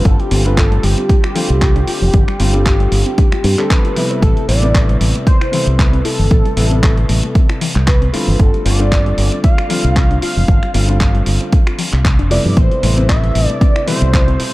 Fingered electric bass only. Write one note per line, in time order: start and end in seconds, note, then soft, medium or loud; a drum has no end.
0.05 0.15 G1 loud
0.32 0.78 G1 loud
0.84 0.94 G1 loud
1.50 1.82 C2 loud
1.88 muted fingered electric bass stroke soft
2.02 2.11 F1 loud
2.14 2.24 G1 loud
2.40 2.87 G1 loud
2.92 3.02 G1 loud
3.33 muted fingered electric bass stroke soft
3.44 3.54 G2 loud
4.23 4.33 A1 loud
4.48 4.95 A1 loud
5.01 5.11 A1 loud
5.67 6.00 C2 loud
6.05 muted fingered electric bass stroke soft
6.19 6.28 G1 loud
6.31 6.41 A1 loud
6.57 7.04 A1 loud
7.09 7.20 A1 loud
7.76 8.08 C2 loud
8.14 muted fingered electric bass stroke soft
8.28 8.36 G1 loud
8.40 8.50 G1 loud
8.66 9.13 G1 loud
9.18 9.28 G1 loud
9.85 10.17 C2 loud
10.23 muted fingered electric bass stroke soft
10.37 10.45 F1 loud
10.48 10.59 G1 loud
10.75 11.21 G1 loud
11.27 11.37 G1 medium
11.93 12.18 C2 loud
12.19 12.37 F1 medium
12.46 12.54 G2 medium
12.57 12.67 A1 loud
12.83 13.30 A1 loud
13.35 13.46 A1 medium
14.02 14.34 C2 loud
14.40 muted fingered electric bass stroke soft